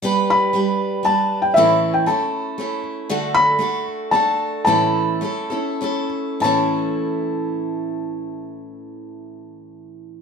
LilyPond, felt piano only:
\new Staff \with { instrumentName = "Felt piano" } { \time 3/4 \key a \mixolydian \tempo 4 = 110 r8 b''4. a''8. g''16 | e''8. g''16 a''4. r8 | r8 b''4 r8 a''4 | a''2~ a''8 r8 |
a''2.~ | a''2. | }